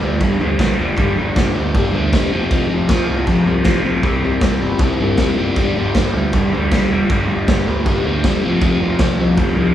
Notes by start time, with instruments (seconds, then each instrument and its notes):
0.02 picked electric bass D2, overdriven electric guitar G2 D3 G3
0.20 picked electric bass G1, overdriven electric guitar G2 D3 G3, kick, crash
0.39 picked electric bass D2, overdriven electric guitar G2 D3 G3
0.59 picked electric bass B1, overdriven electric guitar G2 D3 G3, kick, snare, crash
0.77 picked electric bass E1, overdriven electric guitar G2 D3 G3
0.97 picked electric bass G1, overdriven electric guitar G2 D3 G3, kick, crash
1.17 picked electric bass G1, overdriven electric guitar G2 D3 G3
1.35 picked electric bass G1, overdriven electric guitar G2 D3 G3, kick, snare, crash
1.54 picked electric bass D2, overdriven electric guitar G2 D3 G3
1.75 picked electric bass G1, overdriven electric guitar G2 D3 G3, kick, crash
1.92 picked electric bass D2, overdriven electric guitar G2 D3 G3
2.12 picked electric bass E1, overdriven electric guitar G2 D3 G3, kick, snare, crash
2.31 picked electric bass F1, overdriven electric guitar F2 C3 F3
2.50 picked electric bass F1, overdriven electric guitar F2 C3 F3, kick, crash
2.68 overdriven electric guitar F2 C3 F3
2.73 picked electric bass F1
2.88 picked electric bass F1, overdriven electric guitar F2 C3 F3, kick, snare, crash
3.07 picked electric bass C2, overdriven electric guitar F2 C3 F3
3.26 picked electric bass F1, overdriven electric guitar F2 C3 F3, kick, crash
3.45 picked electric bass C2, overdriven electric guitar F2 C3 F3
3.64 picked electric bass A1, overdriven electric guitar F2 C3 F3, kick, snare, crash
3.84 picked electric bass B1, overdriven electric guitar F2 C3 F3
4.03 picked electric bass C2, overdriven electric guitar C3 G3 C4, kick, crash
4.22 picked electric bass C2, overdriven electric guitar C3 G3 C4
4.40 picked electric bass C2, overdriven electric guitar C3 G3 C4, kick, snare, crash
4.61 picked electric bass G1, overdriven electric guitar C3 G3 C4
4.78 picked electric bass C2, overdriven electric guitar C3 G3, kick, crash
4.83 overdriven electric guitar C4
4.99 picked electric bass G1, overdriven electric guitar C3 G3 C4
5.17 picked electric bass E1, overdriven electric guitar C3 G3 C4, kick, snare, crash
5.37 picked electric bass F#1, overdriven electric guitar C3 G3 C4
5.56 picked electric bass G1, overdriven electric guitar G2 D3 G3, kick, crash
5.76 picked electric bass G1, overdriven electric guitar G2 D3 G3
5.94 picked electric bass G1, overdriven electric guitar G2 D3 G3, kick, snare, crash
6.14 picked electric bass D2, overdriven electric guitar G2 D3 G3
6.33 picked electric bass G1, overdriven electric guitar G2 D3 G3, kick, crash
6.52 picked electric bass D2, overdriven electric guitar G2 D3 G3
6.71 picked electric bass B1, overdriven electric guitar G2 D3 G3, kick, snare, crash
6.92 picked electric bass E1, overdriven electric guitar G2 D3 G3
7.09 picked electric bass G1, overdriven electric guitar G2 D3 G3, kick, crash
7.28 picked electric bass G1, overdriven electric guitar G2 D3 G3
7.48 picked electric bass G1, overdriven electric guitar G2 D3 G3, kick, snare, crash
7.66 picked electric bass D2, overdriven electric guitar G2 D3 G3
7.86 picked electric bass G1, overdriven electric guitar G2 D3 G3, kick, crash
8.04 picked electric bass D2, overdriven electric guitar G2 D3 G3
8.24 picked electric bass E1, overdriven electric guitar G2 D3 G3, kick, snare, crash
8.41 picked electric bass F1, overdriven electric guitar F2
8.46 overdriven electric guitar C3 F3
8.61 picked electric bass F1, overdriven electric guitar F2 C3 F3, kick, crash
8.80 picked electric bass F1, overdriven electric guitar F2 C3 F3
8.99 picked electric bass F1, overdriven electric guitar F2 C3 F3, kick, snare, crash
9.18 picked electric bass C2, overdriven electric guitar F2 C3 F3
9.37 picked electric bass F1, overdriven electric guitar F2 C3 F3, kick, crash
9.55 picked electric bass C2, overdriven electric guitar F2 C3
9.59 overdriven electric guitar F3